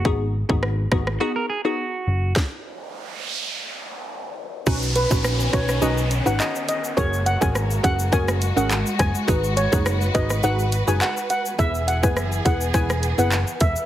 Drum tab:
HH |----------------|----------------|--x---x---x---x-|--x---x---x---x-|
SH |----------------|----------------|xxxxxxxxxxxxxxxx|xxxxxxxxxxxxxxxx|
CP |----------------|----------------|------------x---|------------x---|
SD |----r-rr--------|o---------------|----r-rr--------|----r----r----r-|
BD |o--o--o---------|o---------------|o--o--o---------|o--o--o-o-----o-|

HH |--x---x---x---x-|--x---x---x---x-|
SH |xxxxxxxxxxxxxxxx|xxxxxxxxxxxxxxxx|
CP |------------x---|------------x---|
SD |----r-rr--------|----r----r------|
BD |o--o--o---------|o--o--o-o-----o-|